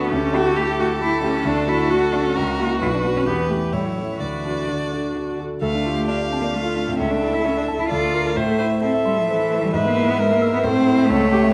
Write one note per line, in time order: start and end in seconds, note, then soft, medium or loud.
0.00 0.12 D2 medium
0.00 0.14 A3 medium
0.00 0.13 B3 medium
0.00 0.14 D4 medium
0.00 0.13 F#4 medium
0.10 0.33 D2 medium
0.10 0.37 C#4 medium
0.10 1.42 G4 medium
0.10 2.38 A4 medium
0.33 0.53 A3 medium
0.33 0.54 E4 medium
0.33 0.58 F#4 loud
0.33 0.54 G4 medium
0.56 0.76 A3 soft
0.56 0.76 E4 medium
0.56 0.78 G4 medium
0.56 0.76 G4 medium
0.79 0.99 A3 medium
0.79 0.99 E4 medium
0.79 0.87 F#4 medium
0.79 0.99 G4 medium
1.00 1.20 A3 soft
1.00 1.21 E4 medium
1.00 1.23 E4 loud
1.00 1.21 G4 medium
1.23 1.43 A3 medium
1.23 1.48 C#4 medium
1.23 1.43 E4 medium
1.23 1.43 G4 medium
1.45 1.67 D2 medium
1.45 1.69 D4 loud
1.45 3.27 F#4 medium
1.67 1.87 A3 medium
1.67 1.88 D4 soft
1.67 1.91 E4 medium
1.67 1.88 F#4 medium
1.90 2.10 A3 soft
1.90 2.10 D4 soft
1.90 2.14 F#4 medium
1.90 2.11 F#4 medium
2.12 2.33 A3 medium
2.12 2.25 D4 medium
2.12 2.34 D4 medium
2.12 2.34 F#4 medium
2.24 2.58 C#4 medium
2.36 2.58 C#2 medium
2.36 2.79 A#4 medium
2.59 2.79 A#3 soft
2.59 2.79 E4 soft
2.59 2.80 F#4 medium
2.80 3.03 B1 medium
2.80 2.86 E4 medium
2.80 3.74 B4 medium
2.93 3.01 D4 medium
3.04 3.24 B3 soft
3.04 3.25 D4 soft
3.04 3.25 F#4 soft
3.16 3.21 C#4 medium
3.26 3.49 E2 medium
3.26 3.49 B3 medium
3.26 3.74 G4 medium
3.50 3.58 A3 medium
3.50 3.70 B3 soft
3.50 3.71 E4 soft
3.50 3.71 G4 soft
3.72 3.96 A2 soft
3.72 3.87 G3 medium
3.72 4.19 E4 soft
3.72 4.22 C#5 soft
3.86 4.09 F#3 medium
3.97 4.18 C#4 soft
3.97 4.18 E4 soft
3.97 4.18 A4 soft
4.09 4.19 E3 medium
4.20 4.43 D2 soft
4.20 4.69 E3 medium
4.20 5.39 F#4 medium
4.20 5.42 D5 soft
4.45 4.66 D4 soft
4.45 4.66 F#4 soft
4.45 4.66 A4 soft
4.68 5.39 D3 soft
4.68 4.90 D4 soft
4.68 4.90 F#4 soft
4.68 4.90 A4 soft
4.92 5.13 D4 soft
4.92 5.13 F#4 soft
4.92 5.14 A4 soft
5.15 5.37 D4 soft
5.15 5.37 F#4 soft
5.15 5.37 A4 soft
5.39 5.60 D4 soft
5.39 5.60 F#4 soft
5.39 5.61 A4 soft
5.61 6.95 D2 medium
5.61 6.05 A3 medium
5.61 5.69 A4 medium
5.61 6.05 F5 medium
5.75 5.93 D4 soft
5.85 6.04 F4 soft
5.85 6.55 G4 medium
5.97 6.15 A4 soft
6.08 6.16 D4 medium
6.08 6.26 D5 medium
6.08 6.97 F5 medium
6.21 6.38 F5 medium
6.30 6.35 C4 medium
6.30 6.50 A5 medium
6.41 6.45 A#3 medium
6.41 6.61 D5 soft
6.52 6.89 A3 medium
6.52 6.98 F4 medium
6.52 6.72 A4 medium
6.64 6.83 F4 soft
6.76 6.94 D4 soft
6.88 7.00 A2 soft
6.88 7.01 C4 medium
6.98 7.89 C#2 medium
6.98 7.12 C#4 medium
6.98 7.89 A4 medium
6.98 7.89 E5 medium
7.10 7.29 A3 medium
7.10 7.35 D4 medium
7.22 7.41 E4 medium
7.32 7.46 E4 medium
7.32 7.51 A4 medium
7.45 7.56 C#4 medium
7.45 7.64 E4 medium
7.57 7.65 D4 medium
7.57 7.75 E5 medium
7.68 7.87 A5 medium
7.79 7.88 E4 medium
7.79 7.91 A4 medium
7.89 8.35 D2 medium
7.89 8.35 F4 medium
7.89 8.15 A4 medium
7.89 8.38 D5 medium
8.03 8.21 A3 soft
8.13 8.33 F4 medium
8.13 8.38 A#4 medium
8.26 8.37 A4 medium
8.36 9.71 A2 medium
8.36 8.81 A3 medium
8.36 8.58 C5 medium
8.36 8.82 E5 medium
8.49 8.67 A3 medium
8.58 8.78 E4 medium
8.58 8.66 C5 medium
8.72 8.90 C5 medium
8.81 8.89 C4 medium
8.81 9.01 A4 medium
8.81 9.28 A4 medium
8.81 9.73 E5 medium
8.94 9.13 E5 medium
9.05 9.20 G3 medium
9.05 9.24 C6 medium
9.18 9.30 F3 medium
9.18 9.36 A4 medium
9.28 9.66 E3 medium
9.28 9.74 A4 medium
9.28 9.47 C5 medium
9.39 9.58 E4 medium
9.50 9.69 A3 medium
9.62 9.74 E3 medium
9.62 9.74 G3 medium
9.73 10.62 G#2 medium
9.73 9.88 G#3 medium
9.73 10.21 B4 medium
9.73 10.65 E5 medium
9.85 10.11 A#3 medium
9.85 10.04 B3 medium
9.97 10.15 E4 medium
10.08 10.20 B3 medium
10.08 10.27 E5 medium
10.19 10.33 G#3 loud
10.19 10.68 A#4 medium
10.19 10.38 B4 medium
10.31 10.53 A#3 medium
10.31 10.49 E5 medium
10.42 10.60 E6 medium
10.53 10.58 B3 medium
10.53 10.65 B4 medium
10.63 11.08 A2 medium
10.63 11.09 C4 loud
10.63 11.08 A4 medium
10.63 11.11 C5 medium
10.75 10.94 A3 medium
10.87 11.05 E4 medium
10.98 11.09 E5 medium
11.08 11.54 C#2 medium
11.08 11.54 A3 loud
11.08 11.31 A4 medium
11.08 11.54 C#5 medium
11.21 11.39 A3 medium
11.32 11.50 G4 medium
11.32 11.40 G4 medium
11.43 11.54 E5 medium